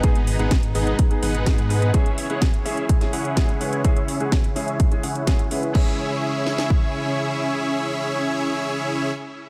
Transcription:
<<
  \new Staff \with { instrumentName = "Supersaw synth" } { \time 4/4 \key cis \minor \tempo 4 = 126 <b dis' gis' b' dis''>8. <b dis' gis' b' fis''>16 r8 <b dis' gis' b' dis''>8 r8 <b dis' gis' b' fis''>8. <b dis' gis' b' fis''>8. | <cis' e' gis' cis'' e''>8. <cis' e' gis' cis'' fis''>16 r8 <cis' e' gis' cis'' e''>8 r8 <cis' e' gis' cis'' fis''>8. <cis' e' gis' cis'' fis''>8. | <cis' e' gis'>8. <cis' e' gis' cis'' fis''>16 r8 <cis' e' gis' cis'' e''>8 r8 <cis' e' gis' cis'' fis''>8. <cis' e' gis' cis'' fis''>8. | <cis' e' gis' cis'' e''>1~ |
<cis' e' gis' cis'' e''>1 | }
  \new Staff \with { instrumentName = "Felt piano" } { \time 4/4 \key cis \minor <gis b dis' gis'>16 r8 <gis b dis' gis'>16 r8 <gis b dis' gis'>8. <gis b dis' gis'>16 r8 <gis b dis' gis'>16 r16 <gis b dis' b'>8 | <gis cis' e' gis'>16 r8 <gis cis' e' gis'>16 r8 <gis cis' e' gis'>8. <gis cis' e' gis'>16 r8 <gis cis' e' gis'>16 r16 <gis cis' e' b'>8 | <gis cis' e' gis'>16 r8 <gis cis' e' gis'>16 r8 <gis cis' e' gis'>8. <gis cis' e' gis'>16 r8 <gis cis' e' gis'>16 r16 <gis cis' e' b'>8 | <gis cis' e' gis'>1~ |
<gis cis' e' gis'>1 | }
  \new Staff \with { instrumentName = "String section" } { \time 4/4 \key cis \minor <gis b dis'>1 | <cis cis' e' gis'>1~ | <cis cis' e' gis'>1 | <cis cis' e' gis'>1~ |
<cis cis' e' gis'>1 | }
  \new Staff \with { instrumentName = "Detuned saw bass" } { \clef bass \time 4/4 \key cis \minor gis,,8. gis,,8. gis,,8 r8 gis,,8. gis,8. | r1 | r1 | r1 |
r1 | }
  \new DrumStaff \with { instrumentName = "Drums" } \drummode { \time 4/4 <hh bd>16 hh16 hho16 hh16 <hh bd sn>16 hh16 hho16 hh16 <hh bd>16 hh16 hho16 hh16 <hh bd sn>16 hh16 hho16 hh16 | <hh bd>16 hh16 hho16 hh16 <hh bd sn>16 hh16 hho16 hh16 <hh bd>16 <hh sn>16 hho16 hh16 <hh bd sn>16 hh16 hho16 hh16 | <hh bd>16 hh16 hho16 hh16 <hh bd sn>16 hh16 hho16 hh16 <hh bd>16 hh16 hho16 hh16 <hh bd sn>16 hh16 hho16 hh16 | <cymc bd>4 r8 sn16 sn16 bd4 r4 |
r4 r4 r4 r4 | }
>>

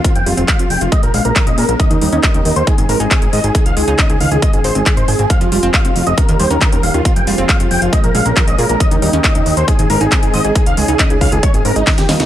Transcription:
<<
  \new Staff \with { instrumentName = "Supersaw synth" } { \time 4/4 \key aes \major \tempo 4 = 137 f'16 g''16 f'16 f'16 f''16 f'16 g''16 f'16 ees''16 bes'16 f''16 bes'16 bes'16 ees''16 bes'16 bes'16 | ees''16 ees'16 ees'16 ees'16 ees''16 ees'16 ees'16 c''16 aes'16 aes'16 bes'16 aes'16 r16 aes'16 ees''16 aes'16 | aes'16 f''16 aes'16 aes'16 ees''16 aes'16 f''16 aes'16 ees''16 aes'16 c''16 aes'16 aes'16 c''16 aes'16 aes'16 | f''16 f'16 f'16 f'16 f''16 f'16 f'16 ees''16 bes'16 bes'16 c''16 bes'16 bes'16 bes'16 f''16 f'16 |
f'16 g''16 f'16 f'16 f''16 f'16 g''16 f'16 ees''16 bes'16 f''16 bes'16 bes'16 ees''16 bes'16 bes'16 | ees''16 ees'16 ees'16 ees'16 ees''16 ees'16 ees'16 c''16 aes'16 aes'16 bes'16 aes'16 r16 aes'16 ees''16 aes'16 | aes'16 f''16 aes'16 aes'16 ees''16 aes'16 f''16 aes'16 des''16 aes'16 bes'16 ees'16 ees'16 g'16 ees'16 ees'16 | }
  \new Staff \with { instrumentName = "Analog synth pad" } { \time 4/4 \key aes \major << { <f c' aes'>2 <aes des'>2 | <ees bes g'>2 <aes ees'>2 | <des des' aes'>2 aes2 | <f c' aes'>2 <ees bes>2 |
<f c' aes'>2 <aes des'>2 | <ees g'>2 <aes ees'>2 | <des des' aes'>2 aes4 <ees bes g'>4 | } \\ { g'2 bes2 | r2 c'2 | r2 c'2 | g'2 des'2 |
r2 bes2~ | bes2 c'2 | r2 c'4 f'4 | } >> }
  \new Staff \with { instrumentName = "Synth pluck" } { \clef bass \time 4/4 \key aes \major c'16 f16 g16 c'16 aes16 c'16 f16 f16 aes16 f16 aes16 bes16 f16 des'16 aes'16 bes16 | ees16 ees16 g16 des'16 bes16 des'16 ees16 ees16 ees'16 ees16 aes16 ees'16 c'16 ees'16 ees16 ees'16 | ees'16 ees16 aes16 ees'16 des'16 ees'16 ees16 ees16 aes16 ees16 aes16 c'16 ees16 ees'16 c''16 c'16 | f16 f16 g16 c'16 aes16 c'16 f16 f16 des'16 ees16 g16 des'16 bes16 des'16 ees16 des'16 |
c'16 f16 g16 c'16 aes16 c'16 f16 f16 aes16 f16 aes16 bes16 f16 des'16 aes'16 bes16 | ees16 ees16 g16 des'16 bes16 des'16 ees16 ees16 ees'16 ees16 aes16 ees'16 c'16 ees'16 ees16 ees'16 | ees'16 ees16 aes16 ees'16 r16 ees'16 ees16 ees16 aes16 ees16 c'16 aes'16 ees16 bes16 g16 ees'16 | }
  \new Staff \with { instrumentName = "Analog synth bass" } { \clef bass \time 4/4 \key aes \major r16 f,,16 f,,16 f,,16 r16 f,,16 f,,16 f,,16 r16 bes,,16 bes,,16 bes,,16 r16 bes,,16 bes,16 bes,,16 | r16 ees,16 ees,16 ees,16 r16 ees,16 ees,16 ees,16 r16 aes,,16 aes,,16 aes,,16 r16 aes,,16 aes,16 aes,,16 | r16 des,16 des,16 des,16 r16 des,16 des,16 des,16 r16 aes,,16 aes,,16 aes,,16 r16 aes,,16 aes,,16 aes,,16 | r16 f,,16 f,,16 f,,16 r16 f,,16 f,,16 f,,16 r16 ees,16 ees,16 ees,16 r16 ees,16 ees,,16 ees,16 |
r16 f,,16 f,,16 f,,16 r16 f,,16 f,,16 f,,16 r16 bes,,16 bes,,16 bes,,16 r16 bes,,16 bes,16 bes,,16 | r16 ees,16 ees,16 ees,16 r16 ees,16 ees,16 ees,16 r16 aes,,16 aes,,16 aes,,16 r16 aes,,16 aes,16 aes,,16 | r16 des,16 des,16 des,16 r16 des,16 des,16 des,16 r16 aes,,16 aes,16 aes,,16 r16 ees,16 ees,16 des,16 | }
  \new DrumStaff \with { instrumentName = "Drums" } \drummode { \time 4/4 <hh bd>16 hh16 hho16 hh16 <hc hh bd>16 hh16 hho16 hh16 <hh bd>16 hh16 hho16 hh16 <hc hh bd>16 hh16 hho16 hh16 | <hh bd>16 hh16 hho16 hh16 <hc hh bd>16 hh16 hho16 hh16 <hh bd>16 hh16 hho16 hh16 <hc hh bd>16 hh16 hho16 hh16 | <hh bd>16 hh16 hho16 hh16 <hc hh bd>16 hh16 hho16 hh16 <hh bd>16 hh16 hho16 hh16 <hc hh bd>16 hh16 hho16 hh16 | <hh bd>16 hh16 hho16 hh16 <hc hh bd>16 hh16 hho16 hh16 <hh bd>16 hh16 hho16 hh16 <hc hh bd>16 hh16 hho16 hh16 |
<hh bd>16 hh16 hho16 hh16 <hc hh bd>16 hh16 hho16 hh16 <hh bd>16 hh16 hho16 hh16 <hc hh bd>16 hh16 hho16 hh16 | <hh bd>16 hh16 hho16 hh16 <hc hh bd>16 hh16 hho16 hh16 <hh bd>16 hh16 hho16 hh16 <hc hh bd>16 hh16 hho16 hh16 | <hh bd>16 hh16 hho16 hh16 <hc hh bd>16 hh16 <hho bd>16 hh16 <hh bd>16 hh16 hho16 hh16 <hc hh bd sn>16 <hh sn>16 <hho sn>16 <hh sn>16 | }
>>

